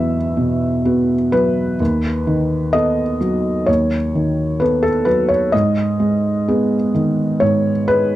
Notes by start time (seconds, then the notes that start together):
Already playing: E2 B2 F#3 B3 F#4 E5
0.37 B2
0.85 B3 F#4
1.32 F#3 B4
1.80 D#2
2.27 D#3
2.73 B3 A4 D#5
3.21 F#3
3.66 D#2 C#5
4.15 D#3
4.60 B3 A4 B4
4.83 A4
5.05 F#3 B4
5.29 C#5
5.52 G#2 D#5
6.00 G#3
6.48 B3 G#4
6.95 D#3
7.40 G#2 C#5
7.88 G#3 B4